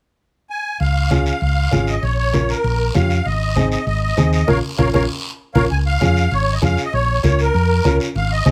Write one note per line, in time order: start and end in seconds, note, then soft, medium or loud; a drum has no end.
0.50 0.78 G#5 medium
0.80 1.29 C#2 medium
0.80 1.25 F5 medium
0.80 high conga soft
0.80 long guiro medium
1.10 1.32 C#4 medium
1.10 1.32 F4 medium
1.10 1.32 G#4 medium
1.10 high conga medium
1.10 short guiro medium
1.26 1.40 F5 medium
1.26 short guiro medium
1.41 1.66 C#2 medium
1.41 1.89 F5 medium
1.41 high conga soft
1.41 long guiro medium
1.71 1.96 G#1 medium
1.71 1.93 C#4 medium
1.71 1.94 F4 medium
1.71 1.94 G#4 medium
1.71 high conga medium
1.71 short guiro medium
1.87 2.03 D#5 medium
1.87 short guiro medium
2.02 2.52 A#1 medium
2.02 2.17 C#5 medium
2.02 high conga soft
2.02 long guiro medium
2.18 2.50 C#5 medium
2.33 2.55 C#4 medium
2.33 2.55 F4 medium
2.33 2.55 A#4 medium
2.33 high conga medium
2.33 short guiro medium
2.49 2.92 A#4 medium
2.49 short guiro medium
2.64 2.89 A#1 medium
2.64 high conga soft
2.64 long guiro medium
2.94 3.19 F2 medium
2.94 3.16 C#4 medium
2.94 3.16 F4 medium
2.94 3.17 G4 medium
2.94 3.27 F5 medium
2.94 high conga medium
2.94 short guiro medium
3.10 short guiro medium
3.26 3.75 G#1 medium
3.26 3.68 D#5 medium
3.26 high conga soft
3.26 long guiro medium
3.56 3.78 C4 medium
3.56 3.78 D#4 medium
3.56 3.78 G#4 medium
3.56 high conga medium
3.56 short guiro medium
3.71 3.85 D#5 medium
3.71 short guiro medium
3.86 4.11 G#1 medium
3.86 4.01 D#5 medium
3.86 high conga soft
3.86 long guiro medium
4.02 4.31 D#5 medium
4.17 4.42 D#2 medium
4.17 4.39 C4 medium
4.17 4.39 D#4 medium
4.17 4.39 G#4 medium
4.17 high conga medium
4.17 short guiro medium
4.33 4.49 D#5 medium
4.33 short guiro medium
4.48 4.59 A#1 medium
4.48 4.58 C#4 medium
4.48 4.58 F4 medium
4.48 4.58 A#4 medium
4.48 4.58 C#5 medium
4.48 4.58 F5 medium
4.48 high conga medium
4.48 long guiro medium
4.78 4.90 A#1 medium
4.78 4.88 C#4 medium
4.78 4.88 F4 medium
4.78 4.88 A#4 medium
4.78 4.88 C#5 medium
4.78 4.89 F5 medium
4.78 high conga medium
4.78 long guiro medium
4.93 5.05 A#1 medium
4.93 5.04 C#4 medium
4.93 5.04 F4 medium
4.93 5.04 A#4 medium
4.93 5.03 C#5 medium
4.93 5.04 F5 medium
4.93 high conga medium
4.93 long guiro medium
5.54 5.67 A#1 medium
5.54 5.65 C#4 medium
5.54 5.65 F4 medium
5.54 5.65 A#4 medium
5.54 5.65 C#5 medium
5.54 5.65 F5 medium
5.54 high conga medium
5.54 long guiro medium
5.70 5.95 C#2 medium
5.70 5.78 G#5 medium
5.70 high conga soft
5.70 long guiro medium
5.86 6.33 F5 loud
6.01 6.26 F2 medium
6.01 6.22 C#4 medium
6.01 6.22 F4 medium
6.01 6.23 G#4 medium
6.01 high conga medium
6.01 short guiro medium
6.16 short guiro medium
6.31 6.56 G#1 medium
6.31 6.54 C#5 medium
6.31 high conga soft
6.31 long guiro medium
6.53 6.58 D#5 medium
6.62 6.75 F2 medium
6.62 6.83 C#4 medium
6.62 6.84 F4 medium
6.62 6.84 G#4 medium
6.62 6.82 F5 medium
6.62 high conga medium
6.62 short guiro medium
6.77 short guiro medium
6.85 6.93 D#5 medium
6.93 7.18 A#1 medium
6.93 7.24 C#5 medium
6.93 high conga soft
6.93 long guiro medium
7.23 7.48 C#2 medium
7.23 7.45 C#4 medium
7.23 7.45 F4 medium
7.23 7.45 A#4 medium
7.23 7.40 C#5 medium
7.23 high conga medium
7.23 short guiro medium
7.39 7.97 A#4 medium
7.39 short guiro medium
7.54 7.79 F2 medium
7.54 high conga soft
7.54 long guiro medium
7.85 7.97 C#2 medium
7.85 8.06 C#4 medium
7.85 8.06 F4 medium
7.85 8.06 A#4 medium
7.85 high conga medium
7.85 short guiro medium
8.00 short guiro medium
8.15 8.40 G#1 medium
8.15 8.32 F5 medium
8.15 high conga soft
8.15 long guiro medium
8.32 8.51 D#5 medium
8.45 8.51 C2 medium
8.45 8.51 C4 medium
8.45 8.51 D#4 medium
8.45 8.51 G#4 medium
8.45 high conga medium
8.45 short guiro medium